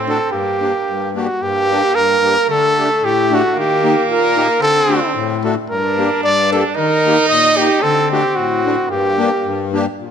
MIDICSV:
0, 0, Header, 1, 4, 480
1, 0, Start_track
1, 0, Key_signature, -2, "minor"
1, 0, Tempo, 542005
1, 279, Time_signature, 2, 2, 24, 8
1, 2203, Tempo, 533333
1, 7963, Tempo, 556586
1, 9015, End_track
2, 0, Start_track
2, 0, Title_t, "Trumpet"
2, 0, Program_c, 0, 56
2, 83, Note_on_c, 0, 69, 95
2, 277, Note_off_c, 0, 69, 0
2, 283, Note_on_c, 0, 67, 90
2, 987, Note_off_c, 0, 67, 0
2, 1037, Note_on_c, 0, 66, 87
2, 1258, Note_on_c, 0, 67, 107
2, 1271, Note_off_c, 0, 66, 0
2, 1728, Note_on_c, 0, 70, 124
2, 1741, Note_off_c, 0, 67, 0
2, 2203, Note_off_c, 0, 70, 0
2, 2216, Note_on_c, 0, 69, 111
2, 2707, Note_on_c, 0, 67, 110
2, 2720, Note_off_c, 0, 69, 0
2, 2974, Note_on_c, 0, 66, 104
2, 2988, Note_off_c, 0, 67, 0
2, 3176, Note_off_c, 0, 66, 0
2, 3198, Note_on_c, 0, 67, 105
2, 3620, Note_off_c, 0, 67, 0
2, 3669, Note_on_c, 0, 70, 111
2, 4095, Note_off_c, 0, 70, 0
2, 4126, Note_on_c, 0, 69, 109
2, 4572, Note_off_c, 0, 69, 0
2, 4859, Note_on_c, 0, 69, 74
2, 4960, Note_off_c, 0, 69, 0
2, 5096, Note_on_c, 0, 70, 94
2, 5541, Note_off_c, 0, 70, 0
2, 5579, Note_on_c, 0, 74, 115
2, 5814, Note_off_c, 0, 74, 0
2, 5836, Note_on_c, 0, 69, 88
2, 5935, Note_off_c, 0, 69, 0
2, 6056, Note_on_c, 0, 70, 105
2, 6498, Note_off_c, 0, 70, 0
2, 6528, Note_on_c, 0, 75, 114
2, 6778, Note_on_c, 0, 67, 104
2, 6792, Note_off_c, 0, 75, 0
2, 7007, Note_on_c, 0, 69, 113
2, 7020, Note_off_c, 0, 67, 0
2, 7260, Note_off_c, 0, 69, 0
2, 7269, Note_on_c, 0, 67, 92
2, 7484, Note_on_c, 0, 66, 92
2, 7497, Note_off_c, 0, 67, 0
2, 7964, Note_off_c, 0, 66, 0
2, 7978, Note_on_c, 0, 67, 98
2, 8668, Note_off_c, 0, 67, 0
2, 8951, Note_on_c, 0, 65, 58
2, 9015, Note_off_c, 0, 65, 0
2, 9015, End_track
3, 0, Start_track
3, 0, Title_t, "Trumpet"
3, 0, Program_c, 1, 56
3, 0, Note_on_c, 1, 60, 100
3, 283, Note_on_c, 1, 58, 77
3, 297, Note_off_c, 1, 60, 0
3, 1023, Note_off_c, 1, 58, 0
3, 1234, Note_on_c, 1, 58, 92
3, 2202, Note_on_c, 1, 57, 90
3, 2215, Note_off_c, 1, 58, 0
3, 3148, Note_on_c, 1, 58, 106
3, 3161, Note_off_c, 1, 57, 0
3, 4113, Note_on_c, 1, 60, 119
3, 4126, Note_off_c, 1, 58, 0
3, 4856, Note_off_c, 1, 60, 0
3, 5075, Note_on_c, 1, 62, 103
3, 6034, Note_on_c, 1, 63, 127
3, 6047, Note_off_c, 1, 62, 0
3, 7008, Note_on_c, 1, 60, 99
3, 7022, Note_off_c, 1, 63, 0
3, 7959, Note_on_c, 1, 58, 76
3, 7973, Note_off_c, 1, 60, 0
3, 8693, Note_off_c, 1, 58, 0
3, 9015, End_track
4, 0, Start_track
4, 0, Title_t, "Accordion"
4, 0, Program_c, 2, 21
4, 0, Note_on_c, 2, 45, 57
4, 57, Note_on_c, 2, 57, 60
4, 62, Note_on_c, 2, 62, 56
4, 68, Note_on_c, 2, 66, 64
4, 157, Note_off_c, 2, 57, 0
4, 160, Note_off_c, 2, 62, 0
4, 163, Note_off_c, 2, 45, 0
4, 163, Note_off_c, 2, 66, 0
4, 283, Note_on_c, 2, 43, 58
4, 535, Note_on_c, 2, 58, 56
4, 542, Note_on_c, 2, 62, 58
4, 550, Note_on_c, 2, 67, 57
4, 636, Note_off_c, 2, 58, 0
4, 640, Note_off_c, 2, 62, 0
4, 643, Note_off_c, 2, 67, 0
4, 645, Note_off_c, 2, 43, 0
4, 764, Note_on_c, 2, 43, 56
4, 1022, Note_on_c, 2, 58, 66
4, 1026, Note_on_c, 2, 62, 55
4, 1030, Note_on_c, 2, 67, 67
4, 1122, Note_off_c, 2, 58, 0
4, 1125, Note_off_c, 2, 62, 0
4, 1126, Note_off_c, 2, 67, 0
4, 1130, Note_off_c, 2, 43, 0
4, 1252, Note_on_c, 2, 43, 63
4, 1508, Note_on_c, 2, 58, 75
4, 1511, Note_on_c, 2, 62, 61
4, 1520, Note_on_c, 2, 67, 65
4, 1607, Note_off_c, 2, 58, 0
4, 1608, Note_off_c, 2, 62, 0
4, 1613, Note_off_c, 2, 67, 0
4, 1615, Note_off_c, 2, 43, 0
4, 1736, Note_on_c, 2, 43, 73
4, 1980, Note_on_c, 2, 58, 65
4, 1990, Note_on_c, 2, 62, 65
4, 1996, Note_on_c, 2, 67, 69
4, 2081, Note_off_c, 2, 58, 0
4, 2086, Note_off_c, 2, 62, 0
4, 2088, Note_off_c, 2, 67, 0
4, 2092, Note_off_c, 2, 43, 0
4, 2202, Note_on_c, 2, 50, 70
4, 2458, Note_on_c, 2, 57, 71
4, 2464, Note_on_c, 2, 62, 62
4, 2473, Note_on_c, 2, 67, 74
4, 2559, Note_off_c, 2, 57, 0
4, 2563, Note_off_c, 2, 62, 0
4, 2567, Note_off_c, 2, 50, 0
4, 2567, Note_off_c, 2, 67, 0
4, 2681, Note_on_c, 2, 45, 73
4, 2936, Note_on_c, 2, 57, 67
4, 2943, Note_on_c, 2, 62, 62
4, 2949, Note_on_c, 2, 67, 79
4, 3037, Note_off_c, 2, 57, 0
4, 3040, Note_off_c, 2, 62, 0
4, 3043, Note_off_c, 2, 45, 0
4, 3043, Note_off_c, 2, 67, 0
4, 3159, Note_on_c, 2, 51, 66
4, 3412, Note_on_c, 2, 58, 75
4, 3414, Note_on_c, 2, 63, 66
4, 3420, Note_on_c, 2, 67, 75
4, 3511, Note_off_c, 2, 58, 0
4, 3512, Note_off_c, 2, 63, 0
4, 3515, Note_off_c, 2, 67, 0
4, 3518, Note_off_c, 2, 51, 0
4, 3634, Note_on_c, 2, 46, 79
4, 3887, Note_on_c, 2, 58, 72
4, 3895, Note_on_c, 2, 63, 62
4, 3899, Note_on_c, 2, 67, 80
4, 3987, Note_off_c, 2, 58, 0
4, 3991, Note_off_c, 2, 63, 0
4, 3993, Note_off_c, 2, 67, 0
4, 3994, Note_off_c, 2, 46, 0
4, 4112, Note_on_c, 2, 50, 70
4, 4362, Note_on_c, 2, 57, 69
4, 4365, Note_on_c, 2, 62, 61
4, 4367, Note_on_c, 2, 66, 74
4, 4465, Note_off_c, 2, 57, 0
4, 4467, Note_off_c, 2, 62, 0
4, 4468, Note_off_c, 2, 66, 0
4, 4476, Note_off_c, 2, 50, 0
4, 4600, Note_on_c, 2, 45, 78
4, 4854, Note_on_c, 2, 57, 65
4, 4864, Note_on_c, 2, 66, 69
4, 4865, Note_on_c, 2, 62, 51
4, 4956, Note_off_c, 2, 57, 0
4, 4961, Note_off_c, 2, 62, 0
4, 4961, Note_off_c, 2, 66, 0
4, 4966, Note_off_c, 2, 45, 0
4, 5088, Note_on_c, 2, 43, 66
4, 5347, Note_on_c, 2, 58, 73
4, 5353, Note_on_c, 2, 62, 67
4, 5361, Note_on_c, 2, 67, 75
4, 5446, Note_off_c, 2, 58, 0
4, 5449, Note_off_c, 2, 62, 0
4, 5453, Note_off_c, 2, 43, 0
4, 5453, Note_off_c, 2, 67, 0
4, 5567, Note_on_c, 2, 43, 75
4, 5831, Note_on_c, 2, 58, 76
4, 5837, Note_on_c, 2, 62, 62
4, 5839, Note_on_c, 2, 67, 72
4, 5929, Note_off_c, 2, 58, 0
4, 5932, Note_off_c, 2, 62, 0
4, 5933, Note_off_c, 2, 43, 0
4, 5933, Note_off_c, 2, 67, 0
4, 6066, Note_on_c, 2, 51, 63
4, 6320, Note_on_c, 2, 58, 70
4, 6325, Note_on_c, 2, 63, 71
4, 6333, Note_on_c, 2, 67, 73
4, 6413, Note_off_c, 2, 58, 0
4, 6416, Note_off_c, 2, 63, 0
4, 6420, Note_off_c, 2, 67, 0
4, 6422, Note_off_c, 2, 51, 0
4, 6541, Note_on_c, 2, 46, 71
4, 6784, Note_on_c, 2, 58, 71
4, 6792, Note_on_c, 2, 63, 58
4, 6798, Note_on_c, 2, 67, 80
4, 6882, Note_off_c, 2, 58, 0
4, 6886, Note_off_c, 2, 63, 0
4, 6889, Note_off_c, 2, 67, 0
4, 6894, Note_off_c, 2, 46, 0
4, 7017, Note_on_c, 2, 50, 74
4, 7271, Note_on_c, 2, 57, 70
4, 7279, Note_on_c, 2, 62, 67
4, 7283, Note_on_c, 2, 66, 86
4, 7364, Note_off_c, 2, 57, 0
4, 7368, Note_off_c, 2, 62, 0
4, 7370, Note_off_c, 2, 66, 0
4, 7372, Note_off_c, 2, 50, 0
4, 7495, Note_on_c, 2, 45, 72
4, 7745, Note_on_c, 2, 57, 66
4, 7756, Note_on_c, 2, 62, 65
4, 7758, Note_on_c, 2, 66, 65
4, 7842, Note_off_c, 2, 57, 0
4, 7847, Note_off_c, 2, 62, 0
4, 7848, Note_off_c, 2, 66, 0
4, 7853, Note_off_c, 2, 45, 0
4, 7968, Note_on_c, 2, 43, 73
4, 8218, Note_on_c, 2, 58, 77
4, 8221, Note_on_c, 2, 62, 63
4, 8231, Note_on_c, 2, 67, 73
4, 8316, Note_off_c, 2, 58, 0
4, 8317, Note_off_c, 2, 62, 0
4, 8322, Note_off_c, 2, 67, 0
4, 8323, Note_off_c, 2, 43, 0
4, 8443, Note_on_c, 2, 43, 70
4, 8690, Note_on_c, 2, 58, 66
4, 8695, Note_on_c, 2, 62, 71
4, 8704, Note_on_c, 2, 67, 84
4, 8794, Note_off_c, 2, 58, 0
4, 8796, Note_off_c, 2, 62, 0
4, 8801, Note_off_c, 2, 67, 0
4, 8806, Note_off_c, 2, 43, 0
4, 8911, Note_on_c, 2, 46, 44
4, 9015, Note_off_c, 2, 46, 0
4, 9015, End_track
0, 0, End_of_file